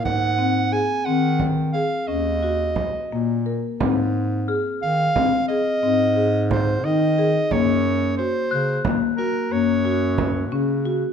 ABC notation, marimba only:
X:1
M:11/8
L:1/8
Q:1/4=89
K:Abmix
V:1 name="Marimba"
z C A C2 A D G2 B, B | C2 A2 C A C A2 E A | B,2 G2 B, G B, G2 D G |]